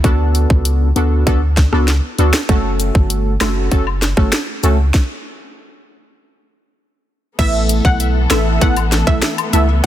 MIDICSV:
0, 0, Header, 1, 6, 480
1, 0, Start_track
1, 0, Tempo, 612245
1, 33, Time_signature, 4, 2, 24, 8
1, 7730, End_track
2, 0, Start_track
2, 0, Title_t, "Synth pluck"
2, 0, Program_c, 0, 84
2, 5792, Note_on_c, 0, 76, 102
2, 5888, Note_off_c, 0, 76, 0
2, 6152, Note_on_c, 0, 78, 83
2, 6344, Note_off_c, 0, 78, 0
2, 6510, Note_on_c, 0, 76, 79
2, 6703, Note_off_c, 0, 76, 0
2, 6753, Note_on_c, 0, 78, 81
2, 6849, Note_off_c, 0, 78, 0
2, 7111, Note_on_c, 0, 76, 86
2, 7208, Note_off_c, 0, 76, 0
2, 7473, Note_on_c, 0, 76, 68
2, 7569, Note_off_c, 0, 76, 0
2, 7730, End_track
3, 0, Start_track
3, 0, Title_t, "Synth stab"
3, 0, Program_c, 1, 62
3, 29, Note_on_c, 1, 59, 97
3, 31, Note_on_c, 1, 62, 87
3, 32, Note_on_c, 1, 66, 84
3, 35, Note_on_c, 1, 69, 99
3, 694, Note_off_c, 1, 59, 0
3, 694, Note_off_c, 1, 62, 0
3, 695, Note_off_c, 1, 66, 0
3, 696, Note_off_c, 1, 69, 0
3, 751, Note_on_c, 1, 59, 80
3, 753, Note_on_c, 1, 62, 73
3, 754, Note_on_c, 1, 66, 71
3, 756, Note_on_c, 1, 69, 88
3, 973, Note_off_c, 1, 59, 0
3, 974, Note_off_c, 1, 62, 0
3, 974, Note_off_c, 1, 66, 0
3, 975, Note_off_c, 1, 69, 0
3, 991, Note_on_c, 1, 59, 98
3, 992, Note_on_c, 1, 62, 91
3, 994, Note_on_c, 1, 66, 88
3, 995, Note_on_c, 1, 69, 108
3, 1100, Note_off_c, 1, 59, 0
3, 1101, Note_off_c, 1, 62, 0
3, 1102, Note_off_c, 1, 66, 0
3, 1102, Note_off_c, 1, 69, 0
3, 1352, Note_on_c, 1, 59, 76
3, 1354, Note_on_c, 1, 62, 70
3, 1356, Note_on_c, 1, 66, 71
3, 1357, Note_on_c, 1, 69, 85
3, 1461, Note_off_c, 1, 59, 0
3, 1462, Note_off_c, 1, 62, 0
3, 1463, Note_off_c, 1, 66, 0
3, 1463, Note_off_c, 1, 69, 0
3, 1712, Note_on_c, 1, 59, 78
3, 1715, Note_on_c, 1, 62, 71
3, 1715, Note_on_c, 1, 66, 72
3, 1716, Note_on_c, 1, 69, 86
3, 1821, Note_off_c, 1, 59, 0
3, 1822, Note_off_c, 1, 62, 0
3, 1823, Note_off_c, 1, 66, 0
3, 1823, Note_off_c, 1, 69, 0
3, 1950, Note_on_c, 1, 57, 92
3, 1953, Note_on_c, 1, 61, 86
3, 1954, Note_on_c, 1, 66, 85
3, 1955, Note_on_c, 1, 69, 103
3, 2614, Note_off_c, 1, 57, 0
3, 2615, Note_off_c, 1, 61, 0
3, 2616, Note_off_c, 1, 66, 0
3, 2616, Note_off_c, 1, 69, 0
3, 2670, Note_on_c, 1, 57, 75
3, 2672, Note_on_c, 1, 61, 72
3, 2673, Note_on_c, 1, 66, 70
3, 2675, Note_on_c, 1, 69, 82
3, 2892, Note_off_c, 1, 57, 0
3, 2893, Note_off_c, 1, 61, 0
3, 2894, Note_off_c, 1, 66, 0
3, 2895, Note_off_c, 1, 69, 0
3, 2910, Note_on_c, 1, 57, 95
3, 2911, Note_on_c, 1, 61, 88
3, 2913, Note_on_c, 1, 66, 87
3, 2915, Note_on_c, 1, 69, 106
3, 3020, Note_off_c, 1, 57, 0
3, 3021, Note_off_c, 1, 61, 0
3, 3021, Note_off_c, 1, 66, 0
3, 3022, Note_off_c, 1, 69, 0
3, 3271, Note_on_c, 1, 57, 78
3, 3274, Note_on_c, 1, 61, 69
3, 3275, Note_on_c, 1, 66, 69
3, 3276, Note_on_c, 1, 69, 85
3, 3380, Note_off_c, 1, 57, 0
3, 3382, Note_off_c, 1, 61, 0
3, 3382, Note_off_c, 1, 66, 0
3, 3383, Note_off_c, 1, 69, 0
3, 3631, Note_on_c, 1, 57, 80
3, 3632, Note_on_c, 1, 61, 75
3, 3634, Note_on_c, 1, 66, 73
3, 3635, Note_on_c, 1, 69, 84
3, 3740, Note_off_c, 1, 57, 0
3, 3741, Note_off_c, 1, 61, 0
3, 3742, Note_off_c, 1, 66, 0
3, 3742, Note_off_c, 1, 69, 0
3, 5791, Note_on_c, 1, 57, 95
3, 5793, Note_on_c, 1, 59, 87
3, 5795, Note_on_c, 1, 64, 86
3, 5795, Note_on_c, 1, 69, 100
3, 6454, Note_off_c, 1, 57, 0
3, 6455, Note_off_c, 1, 59, 0
3, 6456, Note_off_c, 1, 69, 0
3, 6457, Note_off_c, 1, 64, 0
3, 6513, Note_on_c, 1, 57, 79
3, 6514, Note_on_c, 1, 59, 72
3, 6517, Note_on_c, 1, 64, 73
3, 6519, Note_on_c, 1, 69, 87
3, 6734, Note_off_c, 1, 57, 0
3, 6734, Note_off_c, 1, 59, 0
3, 6735, Note_off_c, 1, 64, 0
3, 6737, Note_off_c, 1, 69, 0
3, 6752, Note_on_c, 1, 57, 101
3, 6753, Note_on_c, 1, 59, 87
3, 6754, Note_on_c, 1, 64, 91
3, 6757, Note_on_c, 1, 69, 104
3, 6861, Note_off_c, 1, 57, 0
3, 6861, Note_off_c, 1, 59, 0
3, 6862, Note_off_c, 1, 64, 0
3, 6863, Note_off_c, 1, 69, 0
3, 7113, Note_on_c, 1, 57, 81
3, 7114, Note_on_c, 1, 59, 74
3, 7116, Note_on_c, 1, 64, 75
3, 7118, Note_on_c, 1, 69, 88
3, 7222, Note_off_c, 1, 57, 0
3, 7222, Note_off_c, 1, 59, 0
3, 7223, Note_off_c, 1, 64, 0
3, 7224, Note_off_c, 1, 69, 0
3, 7472, Note_on_c, 1, 57, 80
3, 7474, Note_on_c, 1, 59, 74
3, 7476, Note_on_c, 1, 64, 77
3, 7478, Note_on_c, 1, 69, 91
3, 7581, Note_off_c, 1, 57, 0
3, 7582, Note_off_c, 1, 59, 0
3, 7583, Note_off_c, 1, 64, 0
3, 7584, Note_off_c, 1, 69, 0
3, 7730, End_track
4, 0, Start_track
4, 0, Title_t, "String section"
4, 0, Program_c, 2, 48
4, 5791, Note_on_c, 2, 52, 82
4, 5791, Note_on_c, 2, 57, 74
4, 5791, Note_on_c, 2, 59, 77
4, 5791, Note_on_c, 2, 69, 87
4, 7693, Note_off_c, 2, 52, 0
4, 7693, Note_off_c, 2, 69, 0
4, 7730, Note_off_c, 2, 57, 0
4, 7730, Note_off_c, 2, 59, 0
4, 7730, End_track
5, 0, Start_track
5, 0, Title_t, "Sub bass"
5, 0, Program_c, 3, 38
5, 33, Note_on_c, 3, 38, 97
5, 361, Note_off_c, 3, 38, 0
5, 393, Note_on_c, 3, 37, 96
5, 722, Note_off_c, 3, 37, 0
5, 752, Note_on_c, 3, 38, 100
5, 971, Note_off_c, 3, 38, 0
5, 994, Note_on_c, 3, 38, 105
5, 1322, Note_off_c, 3, 38, 0
5, 1353, Note_on_c, 3, 37, 89
5, 1572, Note_off_c, 3, 37, 0
5, 1713, Note_on_c, 3, 38, 95
5, 1822, Note_off_c, 3, 38, 0
5, 1952, Note_on_c, 3, 30, 101
5, 2281, Note_off_c, 3, 30, 0
5, 2313, Note_on_c, 3, 31, 95
5, 2641, Note_off_c, 3, 31, 0
5, 2674, Note_on_c, 3, 30, 101
5, 2892, Note_off_c, 3, 30, 0
5, 2914, Note_on_c, 3, 30, 98
5, 3242, Note_off_c, 3, 30, 0
5, 3270, Note_on_c, 3, 31, 87
5, 3381, Note_off_c, 3, 31, 0
5, 3633, Note_on_c, 3, 37, 93
5, 3852, Note_off_c, 3, 37, 0
5, 5792, Note_on_c, 3, 33, 107
5, 6121, Note_off_c, 3, 33, 0
5, 6153, Note_on_c, 3, 35, 81
5, 6481, Note_off_c, 3, 35, 0
5, 6513, Note_on_c, 3, 33, 101
5, 6732, Note_off_c, 3, 33, 0
5, 6754, Note_on_c, 3, 33, 98
5, 7082, Note_off_c, 3, 33, 0
5, 7111, Note_on_c, 3, 35, 92
5, 7221, Note_off_c, 3, 35, 0
5, 7472, Note_on_c, 3, 37, 88
5, 7691, Note_off_c, 3, 37, 0
5, 7730, End_track
6, 0, Start_track
6, 0, Title_t, "Drums"
6, 32, Note_on_c, 9, 42, 67
6, 33, Note_on_c, 9, 36, 115
6, 111, Note_off_c, 9, 36, 0
6, 111, Note_off_c, 9, 42, 0
6, 273, Note_on_c, 9, 42, 66
6, 351, Note_off_c, 9, 42, 0
6, 393, Note_on_c, 9, 36, 89
6, 471, Note_off_c, 9, 36, 0
6, 511, Note_on_c, 9, 42, 88
6, 590, Note_off_c, 9, 42, 0
6, 753, Note_on_c, 9, 42, 53
6, 831, Note_off_c, 9, 42, 0
6, 994, Note_on_c, 9, 36, 110
6, 994, Note_on_c, 9, 42, 79
6, 1072, Note_off_c, 9, 36, 0
6, 1072, Note_off_c, 9, 42, 0
6, 1231, Note_on_c, 9, 38, 67
6, 1233, Note_on_c, 9, 36, 83
6, 1233, Note_on_c, 9, 42, 47
6, 1310, Note_off_c, 9, 38, 0
6, 1311, Note_off_c, 9, 36, 0
6, 1311, Note_off_c, 9, 42, 0
6, 1354, Note_on_c, 9, 37, 93
6, 1432, Note_off_c, 9, 37, 0
6, 1472, Note_on_c, 9, 38, 64
6, 1473, Note_on_c, 9, 42, 74
6, 1550, Note_off_c, 9, 38, 0
6, 1552, Note_off_c, 9, 42, 0
6, 1713, Note_on_c, 9, 42, 61
6, 1791, Note_off_c, 9, 42, 0
6, 1828, Note_on_c, 9, 26, 90
6, 1831, Note_on_c, 9, 38, 114
6, 1906, Note_off_c, 9, 26, 0
6, 1909, Note_off_c, 9, 38, 0
6, 1952, Note_on_c, 9, 36, 121
6, 1952, Note_on_c, 9, 42, 68
6, 2030, Note_off_c, 9, 36, 0
6, 2030, Note_off_c, 9, 42, 0
6, 2192, Note_on_c, 9, 42, 66
6, 2192, Note_on_c, 9, 69, 60
6, 2271, Note_off_c, 9, 42, 0
6, 2271, Note_off_c, 9, 69, 0
6, 2313, Note_on_c, 9, 36, 90
6, 2391, Note_off_c, 9, 36, 0
6, 2431, Note_on_c, 9, 42, 87
6, 2510, Note_off_c, 9, 42, 0
6, 2669, Note_on_c, 9, 26, 97
6, 2672, Note_on_c, 9, 69, 80
6, 2672, Note_on_c, 9, 76, 84
6, 2673, Note_on_c, 9, 38, 119
6, 2673, Note_on_c, 9, 42, 56
6, 2748, Note_off_c, 9, 26, 0
6, 2750, Note_off_c, 9, 69, 0
6, 2750, Note_off_c, 9, 76, 0
6, 2751, Note_off_c, 9, 38, 0
6, 2751, Note_off_c, 9, 42, 0
6, 2913, Note_on_c, 9, 36, 105
6, 2913, Note_on_c, 9, 42, 78
6, 2991, Note_off_c, 9, 42, 0
6, 2992, Note_off_c, 9, 36, 0
6, 3033, Note_on_c, 9, 76, 70
6, 3111, Note_off_c, 9, 76, 0
6, 3152, Note_on_c, 9, 38, 69
6, 3153, Note_on_c, 9, 42, 50
6, 3154, Note_on_c, 9, 69, 75
6, 3230, Note_off_c, 9, 38, 0
6, 3232, Note_off_c, 9, 42, 0
6, 3232, Note_off_c, 9, 69, 0
6, 3270, Note_on_c, 9, 36, 93
6, 3273, Note_on_c, 9, 37, 92
6, 3348, Note_off_c, 9, 36, 0
6, 3351, Note_off_c, 9, 37, 0
6, 3388, Note_on_c, 9, 26, 89
6, 3391, Note_on_c, 9, 38, 113
6, 3392, Note_on_c, 9, 42, 74
6, 3466, Note_off_c, 9, 26, 0
6, 3470, Note_off_c, 9, 38, 0
6, 3471, Note_off_c, 9, 42, 0
6, 3633, Note_on_c, 9, 69, 67
6, 3634, Note_on_c, 9, 42, 61
6, 3711, Note_off_c, 9, 69, 0
6, 3712, Note_off_c, 9, 42, 0
6, 3872, Note_on_c, 9, 36, 104
6, 3873, Note_on_c, 9, 38, 89
6, 3951, Note_off_c, 9, 36, 0
6, 3951, Note_off_c, 9, 38, 0
6, 5792, Note_on_c, 9, 36, 117
6, 5792, Note_on_c, 9, 42, 70
6, 5792, Note_on_c, 9, 49, 97
6, 5870, Note_off_c, 9, 36, 0
6, 5870, Note_off_c, 9, 42, 0
6, 5871, Note_off_c, 9, 49, 0
6, 6032, Note_on_c, 9, 42, 94
6, 6032, Note_on_c, 9, 69, 61
6, 6110, Note_off_c, 9, 42, 0
6, 6111, Note_off_c, 9, 69, 0
6, 6153, Note_on_c, 9, 36, 93
6, 6231, Note_off_c, 9, 36, 0
6, 6272, Note_on_c, 9, 42, 93
6, 6350, Note_off_c, 9, 42, 0
6, 6508, Note_on_c, 9, 26, 91
6, 6511, Note_on_c, 9, 38, 121
6, 6511, Note_on_c, 9, 42, 77
6, 6514, Note_on_c, 9, 69, 88
6, 6514, Note_on_c, 9, 76, 86
6, 6587, Note_off_c, 9, 26, 0
6, 6590, Note_off_c, 9, 38, 0
6, 6590, Note_off_c, 9, 42, 0
6, 6592, Note_off_c, 9, 69, 0
6, 6592, Note_off_c, 9, 76, 0
6, 6754, Note_on_c, 9, 36, 107
6, 6754, Note_on_c, 9, 42, 76
6, 6832, Note_off_c, 9, 42, 0
6, 6833, Note_off_c, 9, 36, 0
6, 6872, Note_on_c, 9, 42, 58
6, 6874, Note_on_c, 9, 76, 71
6, 6950, Note_off_c, 9, 42, 0
6, 6953, Note_off_c, 9, 76, 0
6, 6993, Note_on_c, 9, 38, 70
6, 6994, Note_on_c, 9, 42, 70
6, 6994, Note_on_c, 9, 69, 74
6, 7071, Note_off_c, 9, 38, 0
6, 7072, Note_off_c, 9, 69, 0
6, 7073, Note_off_c, 9, 42, 0
6, 7111, Note_on_c, 9, 36, 96
6, 7115, Note_on_c, 9, 37, 91
6, 7189, Note_off_c, 9, 36, 0
6, 7193, Note_off_c, 9, 37, 0
6, 7228, Note_on_c, 9, 26, 91
6, 7231, Note_on_c, 9, 38, 121
6, 7232, Note_on_c, 9, 42, 78
6, 7306, Note_off_c, 9, 26, 0
6, 7309, Note_off_c, 9, 38, 0
6, 7311, Note_off_c, 9, 42, 0
6, 7355, Note_on_c, 9, 76, 76
6, 7356, Note_on_c, 9, 42, 54
6, 7434, Note_off_c, 9, 76, 0
6, 7435, Note_off_c, 9, 42, 0
6, 7474, Note_on_c, 9, 69, 70
6, 7475, Note_on_c, 9, 42, 87
6, 7553, Note_off_c, 9, 42, 0
6, 7553, Note_off_c, 9, 69, 0
6, 7730, End_track
0, 0, End_of_file